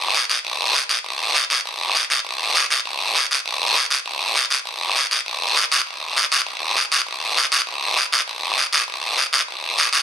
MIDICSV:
0, 0, Header, 1, 2, 480
1, 0, Start_track
1, 0, Tempo, 301054
1, 721, Time_signature, 4, 2, 24, 8
1, 15981, End_track
2, 0, Start_track
2, 0, Title_t, "Drums"
2, 232, Note_on_c, 9, 73, 64
2, 392, Note_off_c, 9, 73, 0
2, 471, Note_on_c, 9, 73, 66
2, 631, Note_off_c, 9, 73, 0
2, 712, Note_on_c, 9, 74, 69
2, 871, Note_off_c, 9, 74, 0
2, 1188, Note_on_c, 9, 73, 66
2, 1348, Note_off_c, 9, 73, 0
2, 1424, Note_on_c, 9, 73, 69
2, 1584, Note_off_c, 9, 73, 0
2, 1664, Note_on_c, 9, 74, 72
2, 1823, Note_off_c, 9, 74, 0
2, 2147, Note_on_c, 9, 73, 67
2, 2307, Note_off_c, 9, 73, 0
2, 2394, Note_on_c, 9, 73, 66
2, 2554, Note_off_c, 9, 73, 0
2, 2638, Note_on_c, 9, 74, 70
2, 2798, Note_off_c, 9, 74, 0
2, 3112, Note_on_c, 9, 73, 72
2, 3271, Note_off_c, 9, 73, 0
2, 3350, Note_on_c, 9, 73, 67
2, 3510, Note_off_c, 9, 73, 0
2, 3583, Note_on_c, 9, 74, 75
2, 3742, Note_off_c, 9, 74, 0
2, 4069, Note_on_c, 9, 73, 62
2, 4228, Note_off_c, 9, 73, 0
2, 4313, Note_on_c, 9, 73, 69
2, 4472, Note_off_c, 9, 73, 0
2, 4551, Note_on_c, 9, 74, 74
2, 4710, Note_off_c, 9, 74, 0
2, 5036, Note_on_c, 9, 73, 71
2, 5195, Note_off_c, 9, 73, 0
2, 5279, Note_on_c, 9, 73, 70
2, 5438, Note_off_c, 9, 73, 0
2, 5511, Note_on_c, 9, 74, 73
2, 5670, Note_off_c, 9, 74, 0
2, 5988, Note_on_c, 9, 73, 68
2, 6147, Note_off_c, 9, 73, 0
2, 6226, Note_on_c, 9, 73, 75
2, 6385, Note_off_c, 9, 73, 0
2, 6469, Note_on_c, 9, 74, 73
2, 6629, Note_off_c, 9, 74, 0
2, 6946, Note_on_c, 9, 73, 71
2, 7106, Note_off_c, 9, 73, 0
2, 7182, Note_on_c, 9, 73, 71
2, 7341, Note_off_c, 9, 73, 0
2, 7421, Note_on_c, 9, 74, 73
2, 7580, Note_off_c, 9, 74, 0
2, 7912, Note_on_c, 9, 73, 67
2, 8071, Note_off_c, 9, 73, 0
2, 8150, Note_on_c, 9, 73, 70
2, 8310, Note_off_c, 9, 73, 0
2, 8388, Note_on_c, 9, 74, 64
2, 8547, Note_off_c, 9, 74, 0
2, 8866, Note_on_c, 9, 73, 61
2, 9026, Note_off_c, 9, 73, 0
2, 9115, Note_on_c, 9, 73, 63
2, 9274, Note_off_c, 9, 73, 0
2, 9353, Note_on_c, 9, 74, 61
2, 9512, Note_off_c, 9, 74, 0
2, 9832, Note_on_c, 9, 73, 60
2, 9991, Note_off_c, 9, 73, 0
2, 10074, Note_on_c, 9, 73, 63
2, 10233, Note_off_c, 9, 73, 0
2, 10309, Note_on_c, 9, 74, 59
2, 10468, Note_off_c, 9, 74, 0
2, 10787, Note_on_c, 9, 73, 59
2, 10946, Note_off_c, 9, 73, 0
2, 11029, Note_on_c, 9, 73, 62
2, 11189, Note_off_c, 9, 73, 0
2, 11266, Note_on_c, 9, 74, 65
2, 11425, Note_off_c, 9, 74, 0
2, 11755, Note_on_c, 9, 73, 58
2, 11914, Note_off_c, 9, 73, 0
2, 11988, Note_on_c, 9, 73, 63
2, 12148, Note_off_c, 9, 73, 0
2, 12230, Note_on_c, 9, 74, 63
2, 12390, Note_off_c, 9, 74, 0
2, 12711, Note_on_c, 9, 73, 59
2, 12870, Note_off_c, 9, 73, 0
2, 12954, Note_on_c, 9, 73, 59
2, 13114, Note_off_c, 9, 73, 0
2, 13195, Note_on_c, 9, 74, 66
2, 13355, Note_off_c, 9, 74, 0
2, 13676, Note_on_c, 9, 73, 59
2, 13836, Note_off_c, 9, 73, 0
2, 13913, Note_on_c, 9, 73, 61
2, 14072, Note_off_c, 9, 73, 0
2, 14158, Note_on_c, 9, 74, 64
2, 14317, Note_off_c, 9, 74, 0
2, 14632, Note_on_c, 9, 73, 59
2, 14791, Note_off_c, 9, 73, 0
2, 14872, Note_on_c, 9, 73, 60
2, 15032, Note_off_c, 9, 73, 0
2, 15121, Note_on_c, 9, 74, 62
2, 15280, Note_off_c, 9, 74, 0
2, 15594, Note_on_c, 9, 73, 61
2, 15753, Note_off_c, 9, 73, 0
2, 15827, Note_on_c, 9, 73, 59
2, 15981, Note_off_c, 9, 73, 0
2, 15981, End_track
0, 0, End_of_file